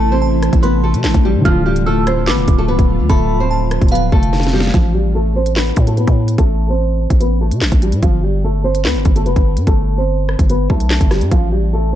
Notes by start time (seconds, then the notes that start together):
Already playing: A1 C3 E3 A3 E4 A4 A5
0.12 C4 C5
0.22 A5
0.42 cross-stick, closed hi-hat
0.53 A1, kick, closed hi-hat
0.62 B3 B4 C6, closed hi-hat
0.84 A3 A4
0.94 C3, closed hi-hat
1.04 A1, snare, clap
1.14 A1, kick, closed hi-hat
1.25 G3 G4
1.35 A2
1.41 D3
1.45 D1 D3 F3 A3 F4 F6, kick, closed hi-hat
1.50 F4
1.66 G3 G4
1.76 closed hi-hat
1.86 A3 A4 E6
2.07 C4 C5, cross-stick, closed hi-hat
2.27 A1 B3 B4 D6, snare, clap, closed hi-hat
2.38 D1
2.48 D1, kick, closed hi-hat
2.58 A3 A4
2.68 C1 B3 B4
2.79 D1, kick, closed hi-hat
2.99 D2
3.10 D1 A3 A4 B5, kick, closed hi-hat
3.40 C4 C5
3.51 A5
3.71 cross-stick, closed hi-hat
3.82 D1, kick, closed hi-hat
3.88 B3 B4 F5, closed hi-hat
3.95 closed hi-hat
4.12 F1 A3 A4, kick
4.23 closed hi-hat
4.33 snare
4.40 snare, closed hi-hat
4.47 snare
4.53 G3 G4, snare
4.60 snare
4.67 snare
4.74 A1 F3 F4, kick, closed hi-hat
4.94 G3 G4
5.15 A3 A4
5.36 C4 C5
5.46 closed hi-hat
5.56 B3 B4, snare, clap
5.76 A2, kick, closed hi-hat
5.87 A3 A4, closed hi-hat
5.97 B3 B4, closed hi-hat
6.07 A2, kick, closed hi-hat
6.28 closed hi-hat
6.38 A1 A3 A4, kick, closed hi-hat
6.70 C4 C5
7.10 A1, kick, closed hi-hat
7.20 B3 B4, closed hi-hat
7.41 A3 A4
7.51 C3, closed hi-hat
7.61 A1, snare, clap
7.72 A1, kick, closed hi-hat
7.82 G3 G4, closed hi-hat
7.92 A2, closed hi-hat
8.03 G1 F3 F4, kick, closed hi-hat
8.23 G3 G4
8.44 A3 A4
8.64 C4 C5
8.75 closed hi-hat
8.85 D2 B3 B4, snare, clap
8.95 G1
9.05 G1, kick, closed hi-hat
9.16 A3 A4, closed hi-hat
9.26 F1 B3 B4, closed hi-hat
9.36 G1, kick, closed hi-hat
9.57 G2, closed hi-hat
9.67 G1 A3 A4, kick, closed hi-hat
9.98 C4 C5
10.29 cross-stick
10.39 G1, kick, closed hi-hat
10.49 B3 B4, closed hi-hat
10.70 B1 A3 A4, kick
10.80 closed hi-hat
10.90 snare, clap
11.01 G1, kick, closed hi-hat
11.11 G3 G4, cross-stick, snare, closed hi-hat
11.21 G2, closed hi-hat
11.31 A1 F3 F4, kick, closed hi-hat
11.52 G3 G4
11.73 A3 A4